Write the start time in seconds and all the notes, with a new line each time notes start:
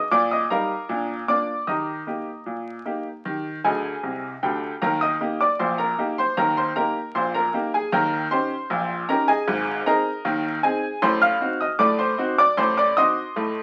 Already playing: D#5 D#6
0.11 A#2 D5 D6
0.31 D#5 D#6
0.50 G3 D#4 G4 A#4 F5 A#5
0.89 A#2 D4
1.28 A#3 D4 F4 D5 D6
1.67 D#3 G4 D#5 A#5 D#6
2.07 A#3 D#4 G4
2.46 A#2
2.85 A#3 D#4 G4
3.25 D#3 G4
3.64 D2 D3 G#4 D#5 G#5
4.03 C2 C3
4.43 D2 D3 G4 G5
4.82 D#2 D#3 A#4 A#5
5.01 D#5 D#6
5.21 A#3 D#4 G4
5.41 D5 D6
5.59 A#1 A#2 C5 C6
5.78 A#4 A#5
5.98 A#3 D#4 G4
6.18 C5 C6
6.37 D#2 D#3 A#4 A#5
6.57 C5 C6
6.76 A#3 D#4 G4 A#4 A#5
7.15 A#1 A#2 C5 C6
7.34 A#4 A#5
7.54 A#3 D#4 G4
7.74 G#4 G#5
7.92 D#2 D#3 A#4 G5 A#5
8.31 C#4 D#4 G4 C5 C6
8.70 A#1 A#2
9.09 C#4 D#4 G4 A#4 A#5
9.28 G#4 D#5 G#5
9.48 G#1 G#2
9.86 C4 D#4 G#4 A#4 D#5 A#5
10.25 D#2 D#3
10.63 C4 D#4 G#4 G#5
11.02 A1 A2 C5 C6
11.22 F5 F6
11.41 C4 D#4 F#4
11.61 D#5 D#6
11.79 A2 A3 D5 D6
11.99 C5 C6
12.18 C4 D#4 F#4
12.38 D5 D6
12.57 A1 A2 C5 C6
12.77 D5 D6
12.97 C4 D#4 F#4 D#5 C6 D#6
13.36 A2 A3